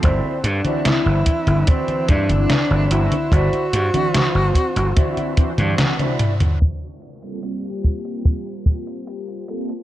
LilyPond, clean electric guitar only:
\new Staff \with { instrumentName = "Clean electric guitar" } { \time 4/4 \key g \dorian \tempo 4 = 73 <e' fis' c'' d''>8 r16 <e' fis' c'' d''>8. r8 <e' fis' c'' d''>8 r8. <e' fis' c'' d''>16 r8 | <e' fis' c'' d''>8 r16 <e' fis' c'' d''>8. r8 <e' fis' c'' d''>8 r8. <e' fis' c'' d''>16 r8 | r1 | }